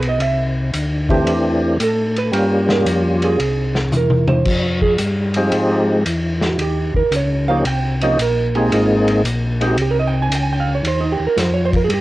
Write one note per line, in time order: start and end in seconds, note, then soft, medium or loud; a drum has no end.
0.00 0.18 B1 medium
0.00 ride soft
0.09 0.18 D#5 medium
0.19 0.71 C2 medium
0.19 0.43 E5 medium
0.19 ride medium
0.73 1.25 D2 loud
0.73 hi-hat pedal medium
0.73 ride medium
1.09 1.77 E3 medium
1.09 1.77 A3 medium
1.09 1.77 C4 medium
1.09 1.77 D4 medium
1.09 1.77 G4 medium
1.09 kick medium
1.09 ride soft
1.26 1.78 E2 medium
1.26 ride medium
1.80 2.32 A2 medium
1.80 2.16 A4 medium
1.80 hi-hat pedal medium
1.80 ride medium
2.16 2.67 B4 loud
2.16 ride soft
2.32 2.85 G2 medium
2.32 3.39 G3 medium
2.32 3.40 A#3 medium
2.32 3.40 C#4 soft
2.32 3.40 F4 soft
2.32 3.40 G4 medium
2.32 ride medium
2.69 2.87 A#4 medium
2.69 snare medium
2.85 3.38 F2 loud
2.85 hi-hat pedal medium
2.85 ride medium
3.22 3.90 G#4 medium
3.22 ride soft
3.39 3.91 C2 medium
3.39 ride medium
3.75 snare soft
3.92 4.44 E2 medium
3.92 hi-hat pedal medium
3.92 mid tom soft
3.97 4.28 A#4 medium
4.10 mid tom medium
4.27 4.78 C5 medium
4.27 mid tom medium
4.45 4.97 F2 medium
4.45 kick medium
4.45 crash medium
4.81 4.93 G#4 medium
4.81 kick soft
4.98 5.51 G2 medium
4.98 hi-hat pedal medium
4.98 ride medium
5.34 6.03 F3 medium
5.34 6.03 G#3 medium
5.34 6.04 C4 medium
5.34 6.04 D#4 medium
5.34 6.04 G4 medium
5.34 ride medium
5.52 6.04 G#2 medium
5.52 ride medium
6.06 6.58 E2 medium
6.06 hi-hat pedal medium
6.06 ride medium
6.41 6.59 F#4 medium
6.41 snare soft
6.58 6.92 D#2 medium
6.58 6.95 G4 medium
6.58 ride medium
6.95 7.03 D#2 soft
6.95 7.13 A#4 medium
6.95 kick soft
7.11 7.64 C#2 loud
7.11 hi-hat pedal medium
7.11 ride medium
7.16 7.49 C#5 medium
7.48 7.64 F3 medium
7.48 7.65 A#3 medium
7.48 7.65 C#4 medium
7.48 7.65 D#4 medium
7.48 7.65 G4 medium
7.48 7.65 F5 loud
7.65 8.17 C2 medium
7.65 8.01 G5 loud
7.65 ride medium
8.01 8.18 F3 medium
8.01 8.18 A#3 medium
8.01 8.18 C#4 medium
8.01 8.18 D#4 medium
8.01 8.19 G4 medium
8.01 8.19 D#5 medium
8.01 ride soft
8.18 8.70 A#1 medium
8.18 8.55 A#4 medium
8.18 hi-hat pedal medium
8.18 ride medium
8.55 9.22 G#3 medium
8.55 9.22 A#3 medium
8.55 9.23 C4 medium
8.55 9.23 D#4 medium
8.55 8.72 G4 medium
8.55 9.23 G#4 medium
8.55 ride soft
8.72 9.24 G#1 medium
8.72 8.95 F4 medium
8.72 ride medium
9.08 ride soft
9.24 9.76 A#1 loud
9.24 hi-hat pedal medium
9.24 ride medium
9.60 9.76 G#3 medium
9.60 9.77 A#3 medium
9.60 9.77 C4 medium
9.60 9.77 D#4 medium
9.60 9.77 G4 medium
9.60 ride soft
9.67 9.77 F#4 medium
9.77 10.29 C2 medium
9.77 ride medium
9.82 9.92 G4 medium
9.91 9.96 A#4 loud
10.00 10.15 D#5 medium
10.07 10.19 G5 loud
10.22 10.31 G#5 loud
10.29 10.82 C#2 loud
10.29 hi-hat pedal medium
10.29 ride medium
10.35 10.44 G5 medium
10.44 10.49 G#5 loud
10.53 10.69 G5 loud
10.60 10.72 F5 medium
10.75 10.84 C#5 medium
10.83 11.17 D#2 medium
10.83 ride medium
10.88 11.04 C5 medium
11.01 11.19 D#4 medium
11.12 11.25 G4 medium
11.20 11.28 D#2 soft
11.27 11.36 A#4 medium
11.36 11.88 F2 loud
11.36 11.56 C5 medium
11.36 snare soft
11.36 hi-hat pedal medium
11.36 ride medium
11.54 11.72 C#5 loud
11.65 11.69 C5 loud
11.73 11.84 A#4 medium
11.73 kick medium
11.73 ride medium
11.84 11.90 G#4 medium
11.89 12.01 G2 medium
11.89 ride medium
11.94 12.01 G4 medium